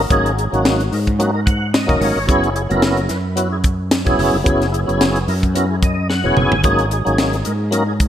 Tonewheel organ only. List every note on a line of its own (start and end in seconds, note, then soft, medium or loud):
0.11 0.32 F#3 loud
0.11 0.32 A#3 medium
0.11 0.32 C#4 medium
0.11 0.32 D#4 medium
0.11 0.33 G#4 loud
0.37 0.44 D#4 soft
0.37 0.45 G#4 soft
0.52 0.83 F#3 medium
0.52 0.83 A#3 medium
0.52 0.83 C#4 medium
0.52 0.83 D#4 medium
0.52 0.84 F#4 medium
0.92 0.99 D#4 soft
0.92 1.00 A#4 soft
1.19 1.30 F#3 medium
1.19 1.31 A#3 medium
1.19 1.31 C#4 medium
1.19 1.31 D#4 medium
1.19 1.31 F#4 medium
1.34 1.40 D#4 soft
1.34 1.40 A#4 soft
1.46 1.71 F#5 medium
1.73 1.99 D#5 medium
1.86 2.18 F#3 medium
1.86 2.18 A#3 medium
1.86 2.19 C#4 medium
1.86 2.19 D#4 medium
1.86 2.19 A#4 medium
2.01 2.26 C#5 medium
2.27 2.49 F#3 loud
2.27 2.49 B3 medium
2.27 2.50 C#4 medium
2.27 2.50 E4 medium
2.27 2.50 G#4 loud
2.54 2.62 E4 soft
2.54 2.63 G#4 soft
2.69 3.01 F#3 medium
2.69 3.01 B3 medium
2.69 3.01 C#4 medium
2.69 3.01 E4 medium
2.69 3.02 A#4 medium
3.08 3.16 E4 soft
3.08 3.18 B4 soft
3.36 3.48 F#3 medium
3.36 3.48 B3 medium
3.36 3.49 C#4 medium
3.36 3.49 E4 medium
3.36 3.49 F#4 medium
3.50 3.57 E4 soft
3.50 3.58 G#4 soft
4.05 4.37 F#3 medium
4.05 4.37 B3 medium
4.05 4.37 C#4 medium
4.05 4.37 E4 medium
4.05 4.37 G#4 medium
4.44 4.66 F#3 medium
4.44 4.67 B3 medium
4.44 4.67 C#4 medium
4.44 4.67 E4 loud
4.44 4.67 G#4 loud
4.72 4.80 E4 soft
4.72 4.81 G#4 soft
4.87 5.18 F#3 medium
4.87 5.19 B3 medium
4.87 5.19 C#4 medium
4.87 5.19 E4 medium
4.87 5.19 G#4 medium
5.27 5.34 E4 soft
5.27 5.35 A#4 soft
5.54 5.66 F#3 medium
5.54 5.66 B3 medium
5.54 5.66 C#4 medium
5.54 5.66 E4 medium
5.54 5.67 A#4 medium
5.69 5.75 E4 soft
5.69 5.76 G#4 soft
5.83 6.08 D#5 medium
6.09 6.35 F#5 medium
6.24 6.55 F#3 medium
6.24 6.55 B3 medium
6.24 6.55 C#4 medium
6.24 6.55 E4 medium
6.24 6.56 G#4 medium
6.36 6.62 G#5 medium
6.64 6.85 F#3 loud
6.64 6.85 A#3 loud
6.64 6.85 C#4 medium
6.64 6.86 D#4 medium
6.64 6.86 G#4 loud
6.91 6.98 D#4 soft
6.91 6.99 G#4 soft
7.05 7.36 F#3 medium
7.05 7.36 A#3 medium
7.05 7.36 C#4 medium
7.05 7.37 D#4 medium
7.05 7.37 G#4 medium
7.44 7.52 D#4 soft
7.44 7.53 A#4 soft
7.71 7.83 F#3 medium
7.71 7.83 A#3 medium
7.71 7.83 C#4 medium
7.71 7.84 D#4 medium
7.71 7.84 A#4 medium
7.87 7.93 D#4 soft
7.87 7.94 G#4 soft